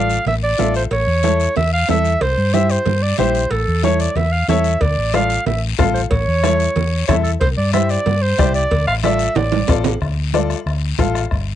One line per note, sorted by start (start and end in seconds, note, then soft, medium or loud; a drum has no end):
0.00 0.16 A1 medium
0.00 0.16 F4 medium
0.00 0.16 A4 medium
0.00 0.17 D5 medium
0.00 0.27 F5 loud
0.10 short guiro medium
0.25 0.52 A1 loud
0.25 0.35 E5 loud
0.25 cowbell medium
0.25 high conga soft
0.25 low conga medium
0.25 long guiro medium
0.43 0.73 D5 loud
0.58 0.85 A1 loud
0.58 0.81 F4 medium
0.58 0.82 A4 medium
0.58 0.82 E5 medium
0.58 cowbell medium
0.58 high conga medium
0.58 low timbale medium
0.58 short guiro medium
0.74 0.83 C5 medium
0.74 short guiro medium
0.91 1.04 A1 loud
0.91 1.53 C#5 loud
0.91 cowbell loud
0.91 high conga soft
0.91 long guiro medium
1.07 1.46 E2 medium
1.23 1.46 E4 medium
1.23 1.47 A4 medium
1.23 1.47 C#5 medium
1.23 cowbell medium
1.23 high conga loud
1.23 short guiro medium
1.40 short guiro medium
1.56 1.82 E2 loud
1.56 1.72 E5 loud
1.56 cowbell medium
1.56 high conga soft
1.56 low conga medium
1.56 long guiro medium
1.73 1.88 F5 loud
1.88 2.15 E2 loud
1.88 2.12 E4 medium
1.88 2.12 A4 medium
1.88 2.12 E5 medium
1.88 2.23 E5 loud
1.88 cowbell medium
1.88 high conga medium
1.88 low timbale medium
1.88 short guiro medium
2.05 short guiro medium
2.21 2.34 C2 loud
2.21 2.55 C5 loud
2.21 cowbell loud
2.21 high conga soft
2.21 long guiro medium
2.38 2.77 G2 medium
2.53 2.77 E4 medium
2.53 2.77 G4 medium
2.53 2.77 C5 medium
2.53 2.72 E5 loud
2.53 cowbell medium
2.53 high conga medium
2.53 short guiro medium
2.70 3.04 C5 loud
2.70 short guiro medium
2.86 3.12 G2 loud
2.86 cowbell medium
2.86 high conga soft
2.86 low conga medium
2.86 long guiro medium
3.02 3.18 D5 loud
3.18 3.45 A#1 loud
3.18 3.41 E4 medium
3.18 3.42 G4 medium
3.18 3.53 C5 medium
3.18 3.42 C5 medium
3.18 cowbell medium
3.18 high conga medium
3.18 low conga medium
3.18 short guiro medium
3.35 short guiro medium
3.51 3.64 A1 loud
3.51 3.84 A4 loud
3.51 cowbell loud
3.51 high conga soft
3.51 long guiro medium
3.68 4.07 E2 medium
3.83 4.06 E4 medium
3.83 4.07 A4 medium
3.83 4.07 C#5 medium
3.83 4.02 C#5 loud
3.83 cowbell medium
3.83 high conga medium
3.83 short guiro medium
4.00 4.18 D5 medium
4.00 short guiro medium
4.15 4.42 E2 loud
4.15 4.34 E5 medium
4.15 cowbell medium
4.15 high conga soft
4.15 low conga medium
4.15 long guiro medium
4.32 4.49 F5 medium
4.48 4.74 E2 loud
4.48 4.71 E4 medium
4.48 4.72 A4 medium
4.48 4.72 C#5 medium
4.48 4.83 E5 loud
4.48 cowbell medium
4.48 high conga medium
4.48 low timbale medium
4.48 short guiro medium
4.64 short guiro medium
4.81 4.94 D2 loud
4.81 5.16 D5 loud
4.81 bombo low medium
4.81 cowbell loud
4.81 high conga soft
4.81 long guiro medium
4.98 5.36 A1 medium
5.13 5.36 F4 medium
5.13 5.36 A4 medium
5.13 5.37 D5 medium
5.13 5.46 F5 loud
5.13 bombo rim medium
5.13 cowbell medium
5.13 high conga medium
5.13 short guiro medium
5.30 short guiro medium
5.46 5.72 A1 loud
5.46 5.62 E5 medium
5.46 cowbell medium
5.46 high conga soft
5.46 low conga medium
5.46 long guiro medium
5.78 6.05 A1 loud
5.78 6.01 F4 medium
5.78 6.01 A4 medium
5.78 6.02 F5 loud
5.78 bombo low medium
5.78 bombo rim medium
5.78 cowbell medium
5.78 high conga medium
5.78 low conga medium
5.78 low timbale medium
5.78 short guiro medium
5.94 6.01 C5 medium
5.94 short guiro medium
6.11 6.24 A1 loud
6.11 7.04 C#5 loud
6.11 bombo low medium
6.11 cowbell loud
6.11 high conga soft
6.11 long guiro medium
6.28 6.67 E2 medium
6.43 6.66 E4 medium
6.43 6.66 A4 medium
6.43 6.67 C#5 medium
6.43 bombo rim medium
6.43 cowbell medium
6.43 high conga loud
6.43 short guiro medium
6.60 short guiro medium
6.76 7.02 E2 medium
6.76 cowbell medium
6.76 high conga soft
6.76 low conga medium
6.76 long guiro medium
7.07 7.35 E2 loud
7.07 7.31 E4 medium
7.07 7.31 A4 medium
7.07 7.15 C#5 loud
7.07 7.31 E5 medium
7.07 bombo low medium
7.07 bombo rim medium
7.07 cowbell medium
7.07 high conga medium
7.07 low conga medium
7.07 low timbale medium
7.07 short guiro medium
7.23 7.31 A4 medium
7.23 short guiro medium
7.40 7.54 C2 loud
7.40 7.48 C5 loud
7.40 bombo low medium
7.40 cowbell loud
7.40 high conga soft
7.40 long guiro medium
7.58 7.96 G2 medium
7.58 7.73 D5 medium
7.73 7.96 E4 medium
7.73 7.97 G4 medium
7.73 7.97 C5 medium
7.73 7.92 E5 loud
7.73 bombo rim loud
7.73 cowbell medium
7.73 high conga loud
7.73 short guiro medium
7.89 8.23 D5 loud
7.89 short guiro medium
8.06 8.32 G2 loud
8.06 cowbell medium
8.06 high conga soft
8.06 low conga medium
8.06 long guiro medium
8.22 8.55 C5 loud
8.38 8.65 C2 loud
8.38 8.61 E4 medium
8.38 8.61 G4 medium
8.38 8.62 D5 medium
8.38 bombo low medium
8.38 bombo rim medium
8.38 cowbell medium
8.38 high conga medium
8.38 short guiro medium
8.54 8.85 D5 loud
8.54 short guiro medium
8.71 8.84 D2 loud
8.71 bombo low medium
8.71 cowbell loud
8.71 high conga soft
8.71 long guiro medium
8.87 9.26 A1 medium
8.87 8.95 F5 loud
8.87 bombo rim medium
9.03 9.27 F4 medium
9.03 9.27 A4 medium
9.03 9.27 D5 medium
9.03 9.37 E5 loud
9.03 bombo rim medium
9.03 cowbell medium
9.03 high conga medium
9.03 short guiro medium
9.19 short guiro medium
9.35 9.62 A1 medium
9.35 9.69 D5 loud
9.35 cowbell medium
9.35 high conga soft
9.35 low conga medium
9.35 high timbale loud
9.35 long guiro medium
9.52 high conga loud
9.52 high timbale medium
9.68 9.95 A1 loud
9.68 9.92 F4 medium
9.68 9.92 A4 medium
9.68 9.92 D5 medium
9.68 bombo low loud
9.68 bombo rim medium
9.68 cowbell medium
9.68 low timbale loud
9.68 short guiro medium
9.84 low conga loud
9.84 low timbale loud
9.84 short guiro medium
10.01 10.53 D2 medium
10.01 bombo low medium
10.01 bombo rim medium
10.01 long guiro medium
10.34 10.56 F4 medium
10.34 10.57 A4 medium
10.34 10.57 D5 medium
10.34 bombo rim medium
10.34 high conga medium
10.34 short guiro medium
10.50 bombo rim medium
10.50 short guiro medium
10.66 10.92 D2 medium
10.66 bombo rim medium
10.66 long guiro medium
10.98 11.25 A1 medium
10.98 11.21 F4 medium
10.98 11.22 A4 medium
10.98 11.22 F5 medium
10.98 bombo low medium
10.98 bombo rim medium
10.98 high conga medium
10.98 short guiro medium
11.15 bombo rim medium
11.15 short guiro medium
11.31 11.55 G1 medium
11.31 bombo low medium
11.31 bombo rim medium
11.31 long guiro medium